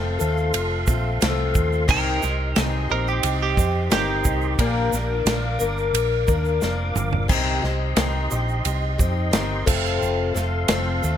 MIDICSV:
0, 0, Header, 1, 6, 480
1, 0, Start_track
1, 0, Tempo, 677201
1, 1337, Time_signature, 4, 2, 24, 8
1, 7919, End_track
2, 0, Start_track
2, 0, Title_t, "Tonewheel organ"
2, 0, Program_c, 0, 16
2, 0, Note_on_c, 0, 69, 65
2, 0, Note_on_c, 0, 77, 59
2, 0, Note_on_c, 0, 84, 73
2, 1312, Note_off_c, 0, 77, 0
2, 1314, Note_off_c, 0, 69, 0
2, 1330, Note_on_c, 0, 75, 66
2, 1334, Note_on_c, 0, 67, 74
2, 3222, Note_off_c, 0, 84, 0
2, 3230, Note_off_c, 0, 75, 0
2, 3232, Note_off_c, 0, 67, 0
2, 3253, Note_on_c, 0, 70, 68
2, 3256, Note_on_c, 0, 77, 65
2, 3259, Note_on_c, 0, 86, 71
2, 5153, Note_off_c, 0, 70, 0
2, 5155, Note_off_c, 0, 77, 0
2, 5156, Note_off_c, 0, 86, 0
2, 5183, Note_on_c, 0, 67, 69
2, 5183, Note_on_c, 0, 75, 65
2, 5183, Note_on_c, 0, 84, 75
2, 6845, Note_off_c, 0, 67, 0
2, 6845, Note_off_c, 0, 75, 0
2, 6845, Note_off_c, 0, 84, 0
2, 6861, Note_on_c, 0, 84, 70
2, 6863, Note_on_c, 0, 69, 67
2, 6865, Note_on_c, 0, 77, 62
2, 7919, Note_off_c, 0, 69, 0
2, 7919, Note_off_c, 0, 77, 0
2, 7919, Note_off_c, 0, 84, 0
2, 7919, End_track
3, 0, Start_track
3, 0, Title_t, "Clean electric guitar"
3, 0, Program_c, 1, 27
3, 1351, Note_on_c, 1, 70, 96
3, 1855, Note_off_c, 1, 70, 0
3, 1855, Note_on_c, 1, 68, 96
3, 2041, Note_off_c, 1, 68, 0
3, 2067, Note_on_c, 1, 70, 82
3, 2177, Note_off_c, 1, 70, 0
3, 2187, Note_on_c, 1, 67, 84
3, 2413, Note_off_c, 1, 67, 0
3, 2428, Note_on_c, 1, 67, 86
3, 2770, Note_off_c, 1, 67, 0
3, 2782, Note_on_c, 1, 67, 104
3, 3708, Note_off_c, 1, 67, 0
3, 7919, End_track
4, 0, Start_track
4, 0, Title_t, "Twelve-string acoustic guitar"
4, 0, Program_c, 2, 25
4, 0, Note_on_c, 2, 53, 73
4, 0, Note_on_c, 2, 57, 68
4, 0, Note_on_c, 2, 60, 75
4, 0, Note_on_c, 2, 69, 73
4, 126, Note_off_c, 2, 69, 0
4, 133, Note_off_c, 2, 60, 0
4, 134, Note_on_c, 2, 69, 59
4, 135, Note_off_c, 2, 57, 0
4, 137, Note_off_c, 2, 53, 0
4, 141, Note_on_c, 2, 60, 58
4, 144, Note_on_c, 2, 57, 50
4, 150, Note_on_c, 2, 53, 43
4, 609, Note_off_c, 2, 69, 0
4, 614, Note_off_c, 2, 60, 0
4, 616, Note_off_c, 2, 57, 0
4, 618, Note_on_c, 2, 69, 55
4, 619, Note_off_c, 2, 53, 0
4, 623, Note_on_c, 2, 60, 57
4, 624, Note_on_c, 2, 57, 54
4, 627, Note_on_c, 2, 53, 48
4, 847, Note_off_c, 2, 53, 0
4, 854, Note_off_c, 2, 57, 0
4, 855, Note_on_c, 2, 53, 68
4, 858, Note_off_c, 2, 60, 0
4, 858, Note_off_c, 2, 69, 0
4, 862, Note_on_c, 2, 57, 68
4, 867, Note_on_c, 2, 60, 70
4, 875, Note_on_c, 2, 69, 75
4, 1326, Note_off_c, 2, 60, 0
4, 1328, Note_off_c, 2, 53, 0
4, 1331, Note_on_c, 2, 51, 90
4, 1332, Note_off_c, 2, 57, 0
4, 1333, Note_on_c, 2, 48, 90
4, 1335, Note_on_c, 2, 60, 97
4, 1338, Note_off_c, 2, 69, 0
4, 1339, Note_on_c, 2, 63, 103
4, 1340, Note_on_c, 2, 67, 96
4, 1554, Note_off_c, 2, 67, 0
4, 1562, Note_on_c, 2, 67, 57
4, 1565, Note_off_c, 2, 63, 0
4, 1569, Note_off_c, 2, 60, 0
4, 1573, Note_off_c, 2, 51, 0
4, 1573, Note_on_c, 2, 63, 52
4, 1574, Note_off_c, 2, 48, 0
4, 1578, Note_on_c, 2, 60, 48
4, 1805, Note_off_c, 2, 60, 0
4, 1809, Note_off_c, 2, 67, 0
4, 1809, Note_on_c, 2, 51, 74
4, 1811, Note_off_c, 2, 63, 0
4, 1813, Note_on_c, 2, 60, 68
4, 1820, Note_on_c, 2, 63, 73
4, 1821, Note_on_c, 2, 67, 74
4, 2042, Note_off_c, 2, 67, 0
4, 2048, Note_off_c, 2, 63, 0
4, 2051, Note_on_c, 2, 67, 57
4, 2052, Note_off_c, 2, 51, 0
4, 2054, Note_off_c, 2, 60, 0
4, 2057, Note_on_c, 2, 63, 54
4, 2066, Note_on_c, 2, 60, 50
4, 2521, Note_off_c, 2, 67, 0
4, 2527, Note_off_c, 2, 63, 0
4, 2530, Note_on_c, 2, 67, 59
4, 2534, Note_off_c, 2, 60, 0
4, 2535, Note_on_c, 2, 63, 51
4, 2542, Note_on_c, 2, 60, 49
4, 2765, Note_off_c, 2, 60, 0
4, 2765, Note_on_c, 2, 51, 67
4, 2766, Note_off_c, 2, 63, 0
4, 2771, Note_off_c, 2, 67, 0
4, 2773, Note_on_c, 2, 60, 64
4, 2775, Note_on_c, 2, 63, 69
4, 2779, Note_on_c, 2, 67, 67
4, 3248, Note_off_c, 2, 51, 0
4, 3251, Note_on_c, 2, 46, 96
4, 3253, Note_off_c, 2, 60, 0
4, 3253, Note_off_c, 2, 63, 0
4, 3254, Note_on_c, 2, 53, 90
4, 3255, Note_off_c, 2, 67, 0
4, 3256, Note_on_c, 2, 58, 90
4, 3259, Note_on_c, 2, 62, 99
4, 3261, Note_on_c, 2, 70, 97
4, 3483, Note_off_c, 2, 70, 0
4, 3488, Note_off_c, 2, 62, 0
4, 3491, Note_off_c, 2, 46, 0
4, 3491, Note_on_c, 2, 70, 59
4, 3493, Note_off_c, 2, 53, 0
4, 3494, Note_off_c, 2, 58, 0
4, 3497, Note_on_c, 2, 62, 59
4, 3506, Note_on_c, 2, 58, 46
4, 3724, Note_off_c, 2, 58, 0
4, 3726, Note_on_c, 2, 53, 66
4, 3727, Note_off_c, 2, 62, 0
4, 3732, Note_off_c, 2, 70, 0
4, 3732, Note_on_c, 2, 58, 67
4, 3736, Note_on_c, 2, 62, 76
4, 3742, Note_on_c, 2, 70, 70
4, 3953, Note_off_c, 2, 70, 0
4, 3962, Note_off_c, 2, 62, 0
4, 3962, Note_on_c, 2, 70, 66
4, 3969, Note_off_c, 2, 53, 0
4, 3970, Note_off_c, 2, 58, 0
4, 3970, Note_on_c, 2, 62, 51
4, 3978, Note_on_c, 2, 58, 49
4, 4433, Note_off_c, 2, 70, 0
4, 4442, Note_on_c, 2, 70, 57
4, 4445, Note_off_c, 2, 62, 0
4, 4447, Note_off_c, 2, 58, 0
4, 4454, Note_on_c, 2, 62, 51
4, 4456, Note_on_c, 2, 58, 50
4, 4685, Note_off_c, 2, 58, 0
4, 4687, Note_off_c, 2, 70, 0
4, 4687, Note_on_c, 2, 53, 62
4, 4688, Note_off_c, 2, 62, 0
4, 4694, Note_on_c, 2, 58, 64
4, 4697, Note_on_c, 2, 62, 70
4, 4702, Note_on_c, 2, 70, 69
4, 5161, Note_on_c, 2, 48, 95
4, 5164, Note_off_c, 2, 53, 0
4, 5167, Note_off_c, 2, 58, 0
4, 5167, Note_off_c, 2, 62, 0
4, 5167, Note_on_c, 2, 51, 89
4, 5170, Note_on_c, 2, 60, 87
4, 5170, Note_on_c, 2, 63, 91
4, 5174, Note_off_c, 2, 70, 0
4, 5177, Note_on_c, 2, 67, 97
4, 5393, Note_off_c, 2, 67, 0
4, 5401, Note_on_c, 2, 67, 64
4, 5402, Note_off_c, 2, 63, 0
4, 5407, Note_off_c, 2, 48, 0
4, 5410, Note_off_c, 2, 51, 0
4, 5410, Note_on_c, 2, 63, 48
4, 5411, Note_off_c, 2, 60, 0
4, 5418, Note_on_c, 2, 60, 45
4, 5644, Note_off_c, 2, 60, 0
4, 5644, Note_on_c, 2, 51, 62
4, 5647, Note_off_c, 2, 67, 0
4, 5648, Note_off_c, 2, 63, 0
4, 5653, Note_on_c, 2, 60, 70
4, 5656, Note_on_c, 2, 63, 69
4, 5662, Note_on_c, 2, 67, 78
4, 5878, Note_off_c, 2, 67, 0
4, 5886, Note_off_c, 2, 63, 0
4, 5887, Note_on_c, 2, 67, 59
4, 5889, Note_off_c, 2, 51, 0
4, 5893, Note_off_c, 2, 60, 0
4, 5894, Note_on_c, 2, 63, 53
4, 5903, Note_on_c, 2, 60, 47
4, 6359, Note_off_c, 2, 67, 0
4, 6366, Note_off_c, 2, 63, 0
4, 6367, Note_on_c, 2, 67, 53
4, 6374, Note_on_c, 2, 63, 52
4, 6378, Note_off_c, 2, 60, 0
4, 6381, Note_on_c, 2, 60, 47
4, 6600, Note_on_c, 2, 51, 61
4, 6601, Note_off_c, 2, 60, 0
4, 6604, Note_off_c, 2, 63, 0
4, 6606, Note_off_c, 2, 67, 0
4, 6610, Note_on_c, 2, 60, 69
4, 6612, Note_on_c, 2, 63, 70
4, 6615, Note_on_c, 2, 67, 76
4, 6844, Note_off_c, 2, 60, 0
4, 6846, Note_off_c, 2, 67, 0
4, 6848, Note_off_c, 2, 51, 0
4, 6848, Note_on_c, 2, 69, 75
4, 6849, Note_off_c, 2, 63, 0
4, 6850, Note_on_c, 2, 57, 67
4, 6852, Note_on_c, 2, 60, 71
4, 6855, Note_on_c, 2, 53, 63
4, 6856, Note_on_c, 2, 48, 64
4, 6859, Note_on_c, 2, 41, 62
4, 7323, Note_off_c, 2, 69, 0
4, 7332, Note_off_c, 2, 57, 0
4, 7332, Note_on_c, 2, 69, 59
4, 7335, Note_off_c, 2, 60, 0
4, 7338, Note_off_c, 2, 48, 0
4, 7338, Note_off_c, 2, 53, 0
4, 7338, Note_on_c, 2, 60, 56
4, 7339, Note_off_c, 2, 41, 0
4, 7341, Note_on_c, 2, 57, 55
4, 7348, Note_on_c, 2, 53, 50
4, 7564, Note_off_c, 2, 53, 0
4, 7567, Note_off_c, 2, 57, 0
4, 7570, Note_off_c, 2, 60, 0
4, 7573, Note_on_c, 2, 53, 77
4, 7575, Note_on_c, 2, 57, 77
4, 7576, Note_off_c, 2, 69, 0
4, 7579, Note_on_c, 2, 60, 75
4, 7584, Note_on_c, 2, 69, 83
4, 7805, Note_off_c, 2, 69, 0
4, 7811, Note_off_c, 2, 60, 0
4, 7814, Note_on_c, 2, 69, 62
4, 7816, Note_off_c, 2, 57, 0
4, 7817, Note_off_c, 2, 53, 0
4, 7819, Note_on_c, 2, 60, 56
4, 7824, Note_on_c, 2, 57, 51
4, 7828, Note_on_c, 2, 53, 45
4, 7919, Note_off_c, 2, 53, 0
4, 7919, Note_off_c, 2, 57, 0
4, 7919, Note_off_c, 2, 60, 0
4, 7919, Note_off_c, 2, 69, 0
4, 7919, End_track
5, 0, Start_track
5, 0, Title_t, "Fingered electric bass"
5, 0, Program_c, 3, 33
5, 0, Note_on_c, 3, 29, 91
5, 114, Note_off_c, 3, 29, 0
5, 149, Note_on_c, 3, 39, 87
5, 359, Note_off_c, 3, 39, 0
5, 383, Note_on_c, 3, 29, 90
5, 595, Note_off_c, 3, 29, 0
5, 621, Note_on_c, 3, 34, 92
5, 834, Note_off_c, 3, 34, 0
5, 869, Note_on_c, 3, 36, 96
5, 1078, Note_off_c, 3, 36, 0
5, 1101, Note_on_c, 3, 39, 97
5, 1314, Note_off_c, 3, 39, 0
5, 1339, Note_on_c, 3, 36, 99
5, 1552, Note_off_c, 3, 36, 0
5, 1584, Note_on_c, 3, 36, 89
5, 1795, Note_off_c, 3, 36, 0
5, 1821, Note_on_c, 3, 36, 85
5, 2033, Note_off_c, 3, 36, 0
5, 2062, Note_on_c, 3, 34, 85
5, 2273, Note_off_c, 3, 34, 0
5, 2296, Note_on_c, 3, 36, 93
5, 2510, Note_off_c, 3, 36, 0
5, 2532, Note_on_c, 3, 41, 86
5, 2748, Note_off_c, 3, 41, 0
5, 2781, Note_on_c, 3, 31, 93
5, 2992, Note_off_c, 3, 31, 0
5, 3014, Note_on_c, 3, 36, 95
5, 3228, Note_off_c, 3, 36, 0
5, 3253, Note_on_c, 3, 34, 101
5, 3467, Note_off_c, 3, 34, 0
5, 3493, Note_on_c, 3, 34, 89
5, 3707, Note_off_c, 3, 34, 0
5, 3724, Note_on_c, 3, 34, 90
5, 3942, Note_off_c, 3, 34, 0
5, 3971, Note_on_c, 3, 31, 89
5, 4186, Note_off_c, 3, 31, 0
5, 4204, Note_on_c, 3, 34, 90
5, 4422, Note_off_c, 3, 34, 0
5, 4453, Note_on_c, 3, 39, 86
5, 4667, Note_off_c, 3, 39, 0
5, 4693, Note_on_c, 3, 29, 91
5, 4907, Note_off_c, 3, 29, 0
5, 4933, Note_on_c, 3, 31, 95
5, 5147, Note_off_c, 3, 31, 0
5, 5170, Note_on_c, 3, 36, 99
5, 5386, Note_off_c, 3, 36, 0
5, 5410, Note_on_c, 3, 36, 81
5, 5626, Note_off_c, 3, 36, 0
5, 5649, Note_on_c, 3, 36, 87
5, 5866, Note_off_c, 3, 36, 0
5, 5897, Note_on_c, 3, 34, 89
5, 6110, Note_off_c, 3, 34, 0
5, 6134, Note_on_c, 3, 36, 93
5, 6349, Note_off_c, 3, 36, 0
5, 6373, Note_on_c, 3, 41, 90
5, 6589, Note_off_c, 3, 41, 0
5, 6610, Note_on_c, 3, 31, 92
5, 6828, Note_off_c, 3, 31, 0
5, 6856, Note_on_c, 3, 29, 94
5, 7071, Note_off_c, 3, 29, 0
5, 7103, Note_on_c, 3, 29, 90
5, 7316, Note_off_c, 3, 29, 0
5, 7337, Note_on_c, 3, 29, 84
5, 7553, Note_off_c, 3, 29, 0
5, 7577, Note_on_c, 3, 29, 91
5, 7794, Note_off_c, 3, 29, 0
5, 7823, Note_on_c, 3, 39, 87
5, 7919, Note_off_c, 3, 39, 0
5, 7919, End_track
6, 0, Start_track
6, 0, Title_t, "Drums"
6, 142, Note_on_c, 9, 82, 82
6, 213, Note_off_c, 9, 82, 0
6, 266, Note_on_c, 9, 82, 25
6, 336, Note_off_c, 9, 82, 0
6, 378, Note_on_c, 9, 82, 65
6, 382, Note_on_c, 9, 53, 74
6, 449, Note_off_c, 9, 82, 0
6, 453, Note_off_c, 9, 53, 0
6, 616, Note_on_c, 9, 82, 92
6, 621, Note_on_c, 9, 36, 88
6, 687, Note_off_c, 9, 82, 0
6, 692, Note_off_c, 9, 36, 0
6, 858, Note_on_c, 9, 82, 63
6, 865, Note_on_c, 9, 53, 73
6, 868, Note_on_c, 9, 38, 102
6, 929, Note_off_c, 9, 82, 0
6, 936, Note_off_c, 9, 53, 0
6, 939, Note_off_c, 9, 38, 0
6, 1098, Note_on_c, 9, 82, 80
6, 1100, Note_on_c, 9, 36, 86
6, 1169, Note_off_c, 9, 82, 0
6, 1171, Note_off_c, 9, 36, 0
6, 1223, Note_on_c, 9, 82, 25
6, 1294, Note_off_c, 9, 82, 0
6, 1337, Note_on_c, 9, 49, 100
6, 1338, Note_on_c, 9, 36, 120
6, 1338, Note_on_c, 9, 82, 60
6, 1408, Note_off_c, 9, 49, 0
6, 1409, Note_off_c, 9, 36, 0
6, 1409, Note_off_c, 9, 82, 0
6, 1578, Note_on_c, 9, 82, 91
6, 1580, Note_on_c, 9, 38, 35
6, 1649, Note_off_c, 9, 82, 0
6, 1651, Note_off_c, 9, 38, 0
6, 1814, Note_on_c, 9, 53, 70
6, 1818, Note_on_c, 9, 38, 107
6, 1822, Note_on_c, 9, 82, 67
6, 1885, Note_off_c, 9, 53, 0
6, 1889, Note_off_c, 9, 38, 0
6, 1893, Note_off_c, 9, 82, 0
6, 2180, Note_on_c, 9, 82, 27
6, 2251, Note_off_c, 9, 82, 0
6, 2290, Note_on_c, 9, 53, 73
6, 2302, Note_on_c, 9, 82, 76
6, 2361, Note_off_c, 9, 53, 0
6, 2373, Note_off_c, 9, 82, 0
6, 2533, Note_on_c, 9, 36, 89
6, 2540, Note_on_c, 9, 82, 95
6, 2604, Note_off_c, 9, 36, 0
6, 2611, Note_off_c, 9, 82, 0
6, 2773, Note_on_c, 9, 82, 67
6, 2775, Note_on_c, 9, 53, 69
6, 2778, Note_on_c, 9, 38, 115
6, 2844, Note_off_c, 9, 82, 0
6, 2845, Note_off_c, 9, 53, 0
6, 2849, Note_off_c, 9, 38, 0
6, 3009, Note_on_c, 9, 82, 100
6, 3013, Note_on_c, 9, 36, 85
6, 3080, Note_off_c, 9, 82, 0
6, 3084, Note_off_c, 9, 36, 0
6, 3128, Note_on_c, 9, 82, 29
6, 3199, Note_off_c, 9, 82, 0
6, 3252, Note_on_c, 9, 36, 110
6, 3252, Note_on_c, 9, 82, 71
6, 3253, Note_on_c, 9, 53, 75
6, 3323, Note_off_c, 9, 36, 0
6, 3323, Note_off_c, 9, 82, 0
6, 3324, Note_off_c, 9, 53, 0
6, 3493, Note_on_c, 9, 82, 101
6, 3500, Note_on_c, 9, 38, 36
6, 3564, Note_off_c, 9, 82, 0
6, 3571, Note_off_c, 9, 38, 0
6, 3729, Note_on_c, 9, 82, 73
6, 3732, Note_on_c, 9, 53, 77
6, 3736, Note_on_c, 9, 38, 124
6, 3800, Note_off_c, 9, 82, 0
6, 3803, Note_off_c, 9, 53, 0
6, 3807, Note_off_c, 9, 38, 0
6, 3968, Note_on_c, 9, 82, 100
6, 4039, Note_off_c, 9, 82, 0
6, 4094, Note_on_c, 9, 82, 30
6, 4165, Note_off_c, 9, 82, 0
6, 4214, Note_on_c, 9, 53, 78
6, 4216, Note_on_c, 9, 82, 80
6, 4285, Note_off_c, 9, 53, 0
6, 4286, Note_off_c, 9, 82, 0
6, 4449, Note_on_c, 9, 82, 103
6, 4453, Note_on_c, 9, 36, 88
6, 4520, Note_off_c, 9, 82, 0
6, 4524, Note_off_c, 9, 36, 0
6, 4571, Note_on_c, 9, 82, 29
6, 4642, Note_off_c, 9, 82, 0
6, 4688, Note_on_c, 9, 82, 77
6, 4693, Note_on_c, 9, 38, 61
6, 4759, Note_off_c, 9, 82, 0
6, 4764, Note_off_c, 9, 38, 0
6, 4931, Note_on_c, 9, 45, 91
6, 4934, Note_on_c, 9, 82, 95
6, 5002, Note_off_c, 9, 45, 0
6, 5005, Note_off_c, 9, 82, 0
6, 5051, Note_on_c, 9, 43, 88
6, 5122, Note_off_c, 9, 43, 0
6, 5168, Note_on_c, 9, 49, 103
6, 5171, Note_on_c, 9, 36, 112
6, 5178, Note_on_c, 9, 82, 75
6, 5239, Note_off_c, 9, 49, 0
6, 5242, Note_off_c, 9, 36, 0
6, 5249, Note_off_c, 9, 82, 0
6, 5417, Note_on_c, 9, 38, 36
6, 5487, Note_off_c, 9, 38, 0
6, 5645, Note_on_c, 9, 53, 69
6, 5649, Note_on_c, 9, 38, 122
6, 5651, Note_on_c, 9, 82, 74
6, 5716, Note_off_c, 9, 53, 0
6, 5720, Note_off_c, 9, 38, 0
6, 5721, Note_off_c, 9, 82, 0
6, 5890, Note_on_c, 9, 82, 94
6, 5961, Note_off_c, 9, 82, 0
6, 6015, Note_on_c, 9, 82, 28
6, 6086, Note_off_c, 9, 82, 0
6, 6131, Note_on_c, 9, 53, 64
6, 6134, Note_on_c, 9, 82, 78
6, 6202, Note_off_c, 9, 53, 0
6, 6205, Note_off_c, 9, 82, 0
6, 6375, Note_on_c, 9, 36, 93
6, 6377, Note_on_c, 9, 82, 92
6, 6446, Note_off_c, 9, 36, 0
6, 6448, Note_off_c, 9, 82, 0
6, 6613, Note_on_c, 9, 53, 68
6, 6616, Note_on_c, 9, 38, 104
6, 6618, Note_on_c, 9, 82, 69
6, 6683, Note_off_c, 9, 53, 0
6, 6687, Note_off_c, 9, 38, 0
6, 6689, Note_off_c, 9, 82, 0
6, 6856, Note_on_c, 9, 36, 103
6, 6856, Note_on_c, 9, 57, 97
6, 6859, Note_on_c, 9, 82, 83
6, 6927, Note_off_c, 9, 36, 0
6, 6927, Note_off_c, 9, 57, 0
6, 6930, Note_off_c, 9, 82, 0
6, 6985, Note_on_c, 9, 82, 25
6, 7056, Note_off_c, 9, 82, 0
6, 7106, Note_on_c, 9, 82, 60
6, 7177, Note_off_c, 9, 82, 0
6, 7342, Note_on_c, 9, 38, 34
6, 7344, Note_on_c, 9, 82, 84
6, 7412, Note_off_c, 9, 38, 0
6, 7415, Note_off_c, 9, 82, 0
6, 7572, Note_on_c, 9, 53, 78
6, 7575, Note_on_c, 9, 38, 117
6, 7584, Note_on_c, 9, 82, 65
6, 7643, Note_off_c, 9, 53, 0
6, 7646, Note_off_c, 9, 38, 0
6, 7655, Note_off_c, 9, 82, 0
6, 7822, Note_on_c, 9, 82, 87
6, 7893, Note_off_c, 9, 82, 0
6, 7919, End_track
0, 0, End_of_file